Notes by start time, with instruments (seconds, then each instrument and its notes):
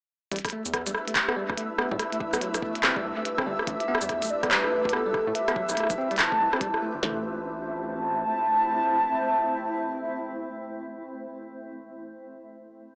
0.32 analog synth bass A1, tine electric piano G3, ambient pad A3 D4 E4 G4 B4, synth texture E5, closed hi-hat
0.36 closed hi-hat
0.39 closed hi-hat
0.45 kick, cross-stick, closed hi-hat
0.49 closed hi-hat
0.53 tine electric piano A3
0.66 analog synth bass E2, shaker
0.74 tine electric piano B3, kick, cross-stick, closed hi-hat
0.87 analog synth bass A1, tine electric piano G3, closed hi-hat, shaker
0.95 cross-stick
1.08 tine electric piano A3, closed hi-hat
1.16 kick, clap, closed hi-hat
1.29 tine electric piano B3, cross-stick
1.37 tine electric piano G3
1.49 analog synth bass D2, kick, cross-stick
1.57 tine electric piano A3, closed hi-hat
1.78 tine electric piano B3, cross-stick
1.91 analog synth bass A2, tine electric piano G3, kick
1.99 cross-stick, closed hi-hat
2.12 tine electric piano A3, closed hi-hat
2.20 kick
2.33 analog synth bass B1, tine electric piano B3, cross-stick, shaker
2.41 tine electric piano F#3, closed hi-hat
2.54 analog synth bass B1, cross-stick, closed hi-hat, shaker
2.62 tine electric piano A3, ambient pad D4 F4 G4 C5, kick
2.75 closed hi-hat
2.83 analog synth bass G1, tine electric piano C4, cross-stick, clap, closed hi-hat
2.96 tine electric piano G3, kick
3.04 analog synth bass C2
3.17 tine electric piano A3
3.25 closed hi-hat
3.38 tine electric piano C4, kick, cross-stick
3.46 analog synth bass G1, tine electric piano G3
3.59 cross-stick
3.67 analog synth bass A1, tine electric piano A3, ambient pad D4 E4 B4, soft synth lead E5, kick, closed hi-hat
3.80 closed hi-hat
3.88 tine electric piano B3
3.95 cross-stick
4.01 analog synth bass E2, tine electric piano G3, shaker
4.09 kick, cross-stick, closed hi-hat
4.22 analog synth bass A1, tine electric piano A3, closed hi-hat, shaker
4.24 shaker
4.26 shaker
4.28 soft synth lead D5, shaker
4.43 tine electric piano B3, kick, cross-stick, closed hi-hat
4.51 tine electric piano G3, soft synth lead B4, clap, closed hi-hat
4.64 cross-stick
4.72 tine electric piano A3
4.85 analog synth bass D2, kick, closed hi-hat
4.93 tine electric piano B3, soft synth lead A4, cross-stick
5.06 tine electric piano G3
5.14 kick, cross-stick
5.27 analog synth bass A2, tine electric piano A3
5.35 soft synth lead E5, closed hi-hat
5.48 tine electric piano B3, cross-stick, closed hi-hat
5.56 tine electric piano F#3, kick
5.69 analog synth bass B1, cross-stick, shaker
5.71 cross-stick
5.73 cross-stick
5.75 cross-stick
5.77 tine electric piano A3, cross-stick, closed hi-hat
5.80 cross-stick
5.84 cross-stick
5.87 analog synth bass B1, kick, cross-stick, closed hi-hat, shaker
5.98 tine electric piano C4, ambient pad D4 F4 G4 C5
6.11 tine electric piano G3, closed hi-hat
6.16 soft synth lead A5, cross-stick, clap, closed hi-hat
6.19 analog synth bass G1, closed hi-hat
6.32 tine electric piano A3, kick
6.40 analog synth bass C2
6.53 tine electric piano C4, cross-stick
6.61 tine electric piano G3, kick, closed hi-hat
6.74 cross-stick
6.82 tine electric piano A3
6.95 analog synth bass G1
7.03 analog synth bass A1, tine electric piano A3, ambient pad A3 C4 E4 C5 E5, soft synth lead A5, snare, floor tom